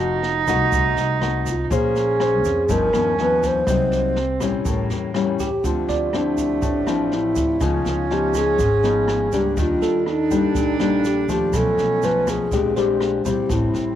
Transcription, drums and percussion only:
0.23 snare
0.47 kick, cross-stick, snare, shaker
0.72 kick, snare, shaker
0.97 snare, shaker
1.21 cross-stick, snare
1.46 kick, snare, shaker
1.71 kick, snare, shaker
1.96 snare, shaker
2.20 cross-stick, snare
2.44 kick, snare, shaker
2.69 kick, snare, shaker
2.93 cross-stick, snare, shaker
3.18 snare
3.43 kick, snare, shaker
3.67 kick, cross-stick, snare, shaker
3.91 snare, shaker
4.16 snare
4.40 kick, cross-stick, snare, shaker
4.65 kick, snare, shaker
4.90 snare, shaker
5.14 cross-stick, snare
5.39 kick, snare, shaker
5.64 kick, snare, shaker
5.88 snare, shaker
6.13 cross-stick, snare
6.38 kick, snare, shaker
6.62 kick, snare, shaker
6.87 cross-stick, snare, shaker
7.12 snare
7.36 kick, snare, shaker
7.61 kick, cross-stick, snare, shaker
7.85 snare, shaker
8.10 snare
8.34 kick, cross-stick, snare, shaker
8.59 kick, snare, shaker
8.83 snare, shaker
9.08 cross-stick, snare
9.32 kick, snare, shaker
9.57 kick, snare, shaker
9.82 snare, shaker
10.06 cross-stick, snare
10.31 kick, snare, shaker
10.55 kick, snare, shaker
10.80 cross-stick, snare, shaker
11.04 snare, shaker
11.29 kick, snare, shaker
11.53 kick, cross-stick, snare, shaker
11.78 snare, shaker
12.02 snare, shaker
12.27 kick, cross-stick, snare, shaker
12.51 kick, snare, shaker
12.76 snare, shaker
13.01 cross-stick, snare
13.25 kick, snare, shaker
13.49 kick, snare, shaker
13.74 snare, shaker

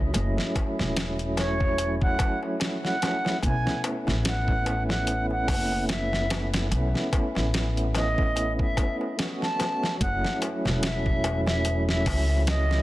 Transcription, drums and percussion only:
0.14 closed hi-hat, darbuka tek
0.37 snare, darbuka tek
0.55 kick, closed hi-hat, darbuka tek
0.79 snare, darbuka tek
0.96 snare, closed hi-hat, darbuka tek
1.19 closed hi-hat, darbuka tek
1.37 snare, closed hi-hat, darbuka tek
1.60 kick, darbuka tek
1.78 closed hi-hat, darbuka tek
2.01 kick, darbuka tek
2.19 kick, closed hi-hat, darbuka tek
2.43 darbuka tek
2.60 snare, closed hi-hat, darbuka tek
2.84 snare, darbuka tek
3.02 snare, closed hi-hat, darbuka tek
3.25 snare, darbuka tek
3.42 kick, closed hi-hat, darbuka tek
3.66 snare, darbuka tek
3.84 closed hi-hat, darbuka tek
4.07 snare, darbuka tek
4.25 snare, closed hi-hat, darbuka tek
4.48 kick, darbuka tek
4.66 closed hi-hat, darbuka tek
4.89 snare, darbuka tek
5.07 closed hi-hat, darbuka tek
5.31 darbuka tek
5.48 kick, open hi-hat, darbuka tek
5.72 darbuka tek
5.89 snare, closed hi-hat, darbuka tek
6.13 snare, darbuka tek
6.30 snare, closed hi-hat, darbuka tek
6.53 snare, closed hi-hat, darbuka tek
6.71 closed hi-hat, darbuka tek
6.94 snare, darbuka tek
7.13 kick, closed hi-hat, darbuka tek
7.35 snare, darbuka tek
7.54 snare, closed hi-hat, darbuka tek
7.77 closed hi-hat, darbuka tek
7.95 snare, closed hi-hat, darbuka tek
8.18 kick, darbuka tek
8.36 closed hi-hat, darbuka tek
8.59 kick, darbuka tek
8.77 kick, closed hi-hat, darbuka tek
9.01 darbuka tek
9.19 snare, closed hi-hat, darbuka tek
9.41 snare, darbuka tek
9.60 snare, closed hi-hat, darbuka tek
9.83 snare, darbuka tek
10.01 kick, closed hi-hat, darbuka tek
10.24 snare, darbuka tek
10.42 closed hi-hat, darbuka tek
10.65 snare, darbuka tek
10.82 snare, closed hi-hat, darbuka tek
11.06 kick, darbuka tek
11.24 closed hi-hat, darbuka tek
11.47 snare, darbuka tek
11.65 closed hi-hat, darbuka tek
11.89 snare, darbuka tek
12.06 kick, open hi-hat, darbuka tek
12.29 darbuka tek
12.47 snare, closed hi-hat, darbuka tek
12.69 snare, darbuka tek

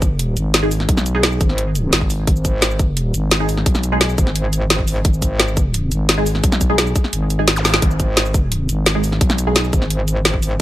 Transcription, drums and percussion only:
0.02 kick, closed hi-hat, shaker
0.19 closed hi-hat
0.37 closed hi-hat, shaker
0.54 snare, closed hi-hat
0.71 open hi-hat, shaker
0.80 snare
0.89 kick, closed hi-hat
0.97 snare, shaker
1.06 closed hi-hat, shaker
1.23 snare, closed hi-hat
1.32 shaker
1.41 kick, closed hi-hat, shaker
1.49 snare
1.58 closed hi-hat
1.75 closed hi-hat, shaker
1.93 snare, closed hi-hat
2.01 kick
2.10 open hi-hat, shaker
2.27 kick, closed hi-hat
2.36 shaker
2.45 kick, closed hi-hat, shaker
2.62 snare, closed hi-hat
2.71 shaker
2.79 kick, closed hi-hat, shaker
2.97 closed hi-hat
3.14 closed hi-hat, shaker
3.31 snare, closed hi-hat
3.49 open hi-hat, shaker
3.57 snare
3.66 kick, closed hi-hat
3.75 snare, shaker
3.83 closed hi-hat, shaker
4.01 snare, closed hi-hat
4.09 shaker
4.18 kick, closed hi-hat, shaker
4.27 snare
4.36 closed hi-hat
4.53 closed hi-hat, shaker
4.70 snare, closed hi-hat
4.79 kick
4.88 open hi-hat, shaker
5.05 kick, closed hi-hat
5.14 shaker
5.22 kick, closed hi-hat, shaker
5.40 snare, closed hi-hat
5.48 shaker
5.57 kick, closed hi-hat, shaker
5.74 closed hi-hat
5.92 closed hi-hat, shaker
6.09 snare, closed hi-hat
6.26 open hi-hat, shaker
6.35 snare
6.44 kick, closed hi-hat
6.52 snare, shaker
6.61 kick, closed hi-hat, shaker
6.78 snare, closed hi-hat
6.87 shaker
6.96 kick, closed hi-hat, shaker
7.04 snare
7.13 closed hi-hat
7.30 closed hi-hat, shaker
7.48 snare, closed hi-hat
7.56 shaker
7.65 snare, open hi-hat, shaker
7.74 snare
7.82 kick, closed hi-hat
7.91 shaker
8.00 kick, closed hi-hat, shaker
8.17 snare, closed hi-hat
8.26 shaker
8.34 kick, closed hi-hat, shaker
8.52 closed hi-hat
8.69 closed hi-hat, shaker
8.86 snare, closed hi-hat
9.04 open hi-hat, shaker
9.12 snare
9.21 kick, closed hi-hat
9.30 snare, shaker
9.38 closed hi-hat, shaker
9.56 snare, closed hi-hat
9.64 shaker
9.73 kick, closed hi-hat, shaker
9.82 snare
9.90 closed hi-hat
10.08 closed hi-hat, shaker
10.25 snare, closed hi-hat
10.34 kick
10.42 open hi-hat, shaker

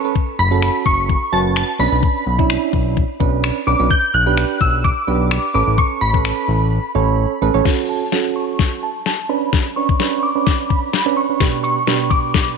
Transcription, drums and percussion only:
0.16 kick
0.62 finger snap
0.86 kick
1.09 kick
1.56 finger snap
2.03 kick
2.39 kick
2.50 finger snap
2.73 kick
2.97 kick
3.20 kick
3.44 finger snap
3.91 kick
4.38 finger snap
4.61 kick
4.85 kick
5.31 finger snap
5.78 kick
6.14 kick
6.25 finger snap
7.65 kick, snare, crash
8.12 snare
8.59 kick, snare
9.06 snare
9.53 kick, snare
9.89 kick
10.00 snare
10.47 kick, snare
10.70 kick
10.94 snare
11.40 kick, snare, closed hi-hat
11.64 closed hi-hat
11.87 snare, closed hi-hat
12.11 kick, closed hi-hat
12.34 kick, snare, closed hi-hat

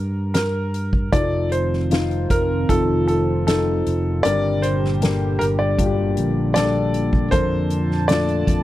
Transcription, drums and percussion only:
0.34 snare, closed hi-hat
0.74 closed hi-hat
0.93 kick
1.13 kick, closed hi-hat
1.52 closed hi-hat
1.73 snare
1.91 snare, closed hi-hat
2.11 closed hi-hat
2.30 kick, closed hi-hat
2.69 kick, closed hi-hat
3.08 closed hi-hat
3.48 snare, closed hi-hat
3.87 closed hi-hat
4.25 closed hi-hat
4.63 closed hi-hat
4.84 snare
5.02 snare, closed hi-hat
5.41 closed hi-hat
5.79 kick, closed hi-hat
6.17 closed hi-hat
6.56 snare, closed hi-hat
6.94 closed hi-hat
7.13 kick
7.32 kick, closed hi-hat
7.70 closed hi-hat
7.91 snare
8.09 snare, closed hi-hat
8.29 closed hi-hat
8.47 kick, closed hi-hat

